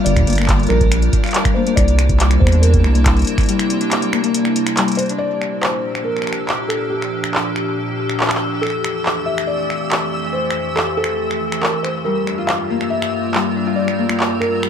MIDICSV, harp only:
0, 0, Header, 1, 2, 480
1, 0, Start_track
1, 0, Tempo, 428571
1, 66, Time_signature, 4, 2, 24, 8
1, 16458, End_track
2, 0, Start_track
2, 0, Title_t, "Harp"
2, 0, Program_c, 0, 46
2, 0, Note_on_c, 0, 55, 79
2, 0, Note_on_c, 0, 58, 97
2, 0, Note_on_c, 0, 60, 73
2, 0, Note_on_c, 0, 62, 76
2, 0, Note_on_c, 0, 65, 97
2, 172, Note_off_c, 0, 55, 0
2, 185, Note_on_c, 0, 55, 71
2, 301, Note_off_c, 0, 58, 0
2, 306, Note_off_c, 0, 60, 0
2, 306, Note_on_c, 0, 58, 99
2, 421, Note_off_c, 0, 58, 0
2, 426, Note_on_c, 0, 58, 96
2, 1012, Note_off_c, 0, 55, 0
2, 1026, Note_on_c, 0, 55, 81
2, 1261, Note_off_c, 0, 62, 0
2, 1266, Note_on_c, 0, 62, 73
2, 1381, Note_off_c, 0, 65, 0
2, 1386, Note_on_c, 0, 65, 97
2, 1612, Note_off_c, 0, 55, 0
2, 1626, Note_on_c, 0, 55, 73
2, 1742, Note_off_c, 0, 58, 0
2, 1746, Note_on_c, 0, 58, 100
2, 1861, Note_off_c, 0, 58, 0
2, 1866, Note_on_c, 0, 58, 100
2, 2042, Note_off_c, 0, 55, 0
2, 2466, Note_on_c, 0, 55, 78
2, 2705, Note_on_c, 0, 60, 74
2, 2821, Note_off_c, 0, 62, 0
2, 2825, Note_on_c, 0, 62, 99
2, 3052, Note_off_c, 0, 55, 0
2, 3066, Note_on_c, 0, 55, 76
2, 3181, Note_off_c, 0, 58, 0
2, 3185, Note_on_c, 0, 58, 98
2, 3301, Note_off_c, 0, 58, 0
2, 3306, Note_on_c, 0, 58, 95
2, 3892, Note_off_c, 0, 55, 0
2, 3906, Note_on_c, 0, 55, 81
2, 4141, Note_off_c, 0, 60, 0
2, 4146, Note_on_c, 0, 60, 77
2, 4211, Note_off_c, 0, 65, 0
2, 4261, Note_off_c, 0, 62, 0
2, 4265, Note_on_c, 0, 62, 102
2, 4492, Note_off_c, 0, 55, 0
2, 4505, Note_on_c, 0, 55, 76
2, 4621, Note_off_c, 0, 58, 0
2, 4625, Note_on_c, 0, 58, 102
2, 4741, Note_off_c, 0, 58, 0
2, 4745, Note_on_c, 0, 58, 102
2, 5332, Note_off_c, 0, 55, 0
2, 5345, Note_on_c, 0, 55, 81
2, 5581, Note_off_c, 0, 60, 0
2, 5585, Note_on_c, 0, 60, 77
2, 5701, Note_off_c, 0, 62, 0
2, 5705, Note_on_c, 0, 62, 99
2, 5882, Note_off_c, 0, 55, 0
2, 8346, Note_off_c, 0, 58, 0
2, 8840, Note_off_c, 0, 62, 0
2, 8945, Note_off_c, 0, 60, 0
2, 13505, Note_on_c, 0, 55, 75
2, 13745, Note_on_c, 0, 62, 69
2, 13865, Note_on_c, 0, 65, 87
2, 14092, Note_off_c, 0, 55, 0
2, 14105, Note_on_c, 0, 55, 69
2, 14225, Note_on_c, 0, 58, 90
2, 14341, Note_off_c, 0, 58, 0
2, 14346, Note_on_c, 0, 58, 90
2, 14932, Note_off_c, 0, 55, 0
2, 14946, Note_on_c, 0, 55, 76
2, 15181, Note_off_c, 0, 62, 0
2, 15186, Note_on_c, 0, 62, 72
2, 15301, Note_off_c, 0, 65, 0
2, 15306, Note_on_c, 0, 65, 94
2, 15532, Note_off_c, 0, 55, 0
2, 15546, Note_on_c, 0, 55, 68
2, 15662, Note_off_c, 0, 58, 0
2, 15667, Note_on_c, 0, 58, 91
2, 15782, Note_off_c, 0, 58, 0
2, 15786, Note_on_c, 0, 58, 93
2, 16373, Note_off_c, 0, 55, 0
2, 16386, Note_on_c, 0, 55, 75
2, 16458, Note_off_c, 0, 55, 0
2, 16458, Note_off_c, 0, 58, 0
2, 16458, Note_off_c, 0, 62, 0
2, 16458, Note_off_c, 0, 65, 0
2, 16458, End_track
0, 0, End_of_file